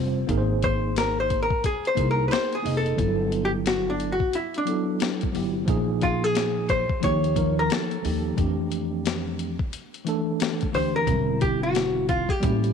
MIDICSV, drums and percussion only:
0, 0, Header, 1, 2, 480
1, 0, Start_track
1, 0, Tempo, 674157
1, 206, Time_signature, 4, 2, 24, 8
1, 9064, End_track
2, 0, Start_track
2, 0, Title_t, "Drums"
2, 205, Note_on_c, 9, 36, 98
2, 206, Note_on_c, 9, 42, 74
2, 276, Note_off_c, 9, 36, 0
2, 277, Note_off_c, 9, 42, 0
2, 445, Note_on_c, 9, 42, 65
2, 453, Note_on_c, 9, 36, 90
2, 516, Note_off_c, 9, 42, 0
2, 524, Note_off_c, 9, 36, 0
2, 687, Note_on_c, 9, 42, 90
2, 696, Note_on_c, 9, 38, 94
2, 758, Note_off_c, 9, 42, 0
2, 768, Note_off_c, 9, 38, 0
2, 928, Note_on_c, 9, 42, 65
2, 930, Note_on_c, 9, 36, 83
2, 999, Note_off_c, 9, 42, 0
2, 1001, Note_off_c, 9, 36, 0
2, 1071, Note_on_c, 9, 36, 93
2, 1142, Note_off_c, 9, 36, 0
2, 1168, Note_on_c, 9, 42, 92
2, 1170, Note_on_c, 9, 36, 83
2, 1239, Note_off_c, 9, 42, 0
2, 1241, Note_off_c, 9, 36, 0
2, 1318, Note_on_c, 9, 42, 51
2, 1390, Note_off_c, 9, 42, 0
2, 1403, Note_on_c, 9, 36, 82
2, 1406, Note_on_c, 9, 42, 75
2, 1474, Note_off_c, 9, 36, 0
2, 1477, Note_off_c, 9, 42, 0
2, 1646, Note_on_c, 9, 42, 80
2, 1660, Note_on_c, 9, 38, 112
2, 1717, Note_off_c, 9, 42, 0
2, 1731, Note_off_c, 9, 38, 0
2, 1798, Note_on_c, 9, 42, 52
2, 1870, Note_off_c, 9, 42, 0
2, 1892, Note_on_c, 9, 46, 47
2, 1963, Note_off_c, 9, 46, 0
2, 2036, Note_on_c, 9, 42, 49
2, 2107, Note_off_c, 9, 42, 0
2, 2124, Note_on_c, 9, 36, 96
2, 2127, Note_on_c, 9, 42, 76
2, 2196, Note_off_c, 9, 36, 0
2, 2198, Note_off_c, 9, 42, 0
2, 2365, Note_on_c, 9, 42, 69
2, 2436, Note_off_c, 9, 42, 0
2, 2604, Note_on_c, 9, 42, 90
2, 2614, Note_on_c, 9, 38, 99
2, 2675, Note_off_c, 9, 42, 0
2, 2685, Note_off_c, 9, 38, 0
2, 2847, Note_on_c, 9, 42, 67
2, 2918, Note_off_c, 9, 42, 0
2, 2990, Note_on_c, 9, 36, 90
2, 3061, Note_off_c, 9, 36, 0
2, 3086, Note_on_c, 9, 42, 90
2, 3157, Note_off_c, 9, 42, 0
2, 3235, Note_on_c, 9, 42, 47
2, 3306, Note_off_c, 9, 42, 0
2, 3324, Note_on_c, 9, 42, 75
2, 3395, Note_off_c, 9, 42, 0
2, 3561, Note_on_c, 9, 42, 84
2, 3575, Note_on_c, 9, 38, 107
2, 3632, Note_off_c, 9, 42, 0
2, 3646, Note_off_c, 9, 38, 0
2, 3710, Note_on_c, 9, 42, 50
2, 3726, Note_on_c, 9, 36, 83
2, 3781, Note_off_c, 9, 42, 0
2, 3797, Note_off_c, 9, 36, 0
2, 3807, Note_on_c, 9, 46, 43
2, 3878, Note_off_c, 9, 46, 0
2, 4043, Note_on_c, 9, 36, 100
2, 4043, Note_on_c, 9, 42, 80
2, 4114, Note_off_c, 9, 36, 0
2, 4114, Note_off_c, 9, 42, 0
2, 4282, Note_on_c, 9, 42, 63
2, 4291, Note_on_c, 9, 36, 91
2, 4354, Note_off_c, 9, 42, 0
2, 4362, Note_off_c, 9, 36, 0
2, 4523, Note_on_c, 9, 42, 90
2, 4533, Note_on_c, 9, 38, 101
2, 4594, Note_off_c, 9, 42, 0
2, 4604, Note_off_c, 9, 38, 0
2, 4763, Note_on_c, 9, 42, 68
2, 4767, Note_on_c, 9, 36, 84
2, 4834, Note_off_c, 9, 42, 0
2, 4839, Note_off_c, 9, 36, 0
2, 4909, Note_on_c, 9, 36, 97
2, 4980, Note_off_c, 9, 36, 0
2, 5004, Note_on_c, 9, 42, 94
2, 5008, Note_on_c, 9, 36, 90
2, 5075, Note_off_c, 9, 42, 0
2, 5079, Note_off_c, 9, 36, 0
2, 5156, Note_on_c, 9, 42, 50
2, 5227, Note_off_c, 9, 42, 0
2, 5241, Note_on_c, 9, 36, 89
2, 5243, Note_on_c, 9, 42, 77
2, 5313, Note_off_c, 9, 36, 0
2, 5314, Note_off_c, 9, 42, 0
2, 5483, Note_on_c, 9, 42, 84
2, 5497, Note_on_c, 9, 38, 113
2, 5554, Note_off_c, 9, 42, 0
2, 5568, Note_off_c, 9, 38, 0
2, 5634, Note_on_c, 9, 42, 54
2, 5705, Note_off_c, 9, 42, 0
2, 5730, Note_on_c, 9, 46, 47
2, 5801, Note_off_c, 9, 46, 0
2, 5964, Note_on_c, 9, 36, 96
2, 5966, Note_on_c, 9, 42, 82
2, 6035, Note_off_c, 9, 36, 0
2, 6037, Note_off_c, 9, 42, 0
2, 6206, Note_on_c, 9, 42, 71
2, 6277, Note_off_c, 9, 42, 0
2, 6447, Note_on_c, 9, 42, 89
2, 6457, Note_on_c, 9, 38, 100
2, 6519, Note_off_c, 9, 42, 0
2, 6528, Note_off_c, 9, 38, 0
2, 6687, Note_on_c, 9, 42, 67
2, 6758, Note_off_c, 9, 42, 0
2, 6831, Note_on_c, 9, 36, 91
2, 6902, Note_off_c, 9, 36, 0
2, 6928, Note_on_c, 9, 42, 93
2, 6999, Note_off_c, 9, 42, 0
2, 7079, Note_on_c, 9, 42, 49
2, 7150, Note_off_c, 9, 42, 0
2, 7168, Note_on_c, 9, 42, 75
2, 7239, Note_off_c, 9, 42, 0
2, 7405, Note_on_c, 9, 42, 87
2, 7419, Note_on_c, 9, 38, 107
2, 7477, Note_off_c, 9, 42, 0
2, 7490, Note_off_c, 9, 38, 0
2, 7553, Note_on_c, 9, 42, 54
2, 7567, Note_on_c, 9, 36, 81
2, 7624, Note_off_c, 9, 42, 0
2, 7638, Note_off_c, 9, 36, 0
2, 7650, Note_on_c, 9, 46, 45
2, 7721, Note_off_c, 9, 46, 0
2, 7883, Note_on_c, 9, 36, 95
2, 7885, Note_on_c, 9, 42, 83
2, 7954, Note_off_c, 9, 36, 0
2, 7956, Note_off_c, 9, 42, 0
2, 8125, Note_on_c, 9, 42, 66
2, 8132, Note_on_c, 9, 36, 93
2, 8196, Note_off_c, 9, 42, 0
2, 8203, Note_off_c, 9, 36, 0
2, 8366, Note_on_c, 9, 42, 88
2, 8375, Note_on_c, 9, 38, 97
2, 8437, Note_off_c, 9, 42, 0
2, 8446, Note_off_c, 9, 38, 0
2, 8606, Note_on_c, 9, 42, 67
2, 8608, Note_on_c, 9, 36, 89
2, 8678, Note_off_c, 9, 42, 0
2, 8680, Note_off_c, 9, 36, 0
2, 8750, Note_on_c, 9, 36, 93
2, 8821, Note_off_c, 9, 36, 0
2, 8848, Note_on_c, 9, 42, 92
2, 8850, Note_on_c, 9, 36, 94
2, 8920, Note_off_c, 9, 42, 0
2, 8921, Note_off_c, 9, 36, 0
2, 8999, Note_on_c, 9, 42, 51
2, 9064, Note_off_c, 9, 42, 0
2, 9064, End_track
0, 0, End_of_file